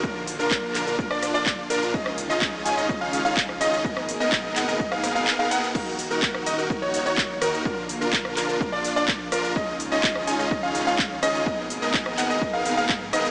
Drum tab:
CC |----------------|----------------|----------------|x---------------|
RD |--x---x---x---x-|--x---x---x---x-|--x---x---x---x-|--x---x---x---x-|
HH |--o---o---o---o-|--o---o---o---o-|--o-o-o---o---o-|--o-o-o---o---o-|
SH |x-xxx-xxx-xxx-xx|x-xxx-xxx-xxx-xx|x-xxx-xxx-xxx-xx|x-xxx-xxx-xxx-xx|
CP |----x-x-----x---|----x-------x---|----x-x-----x---|----x-------x---|
SD |---------rr-----|-r-----------r--|-r-------rr-----|-----r--------r-|
BD |o---o---o---o---|o---o---o---o---|o---o---o-------|o---o---o---o---|

CC |----------------|----------------|----------------|
RD |--x---x---x---x-|--x---x---x---x-|--x---x---x---x-|
HH |--o-o-o---o---o-|--o-o-o---o---o-|--o-o-o---o---o-|
SH |x-xxx-xxx-xxx-xx|x-xxx-xxx-xxx-xx|x-xxx-xxx-xxx-xx|
CP |----x-x-----x---|----x-------x---|----x-x-----x---|
SD |-----r--------r-|-----r--------r-|-----r--------r-|
BD |o---o---o---o---|o---o---o---o---|o---o---o---o---|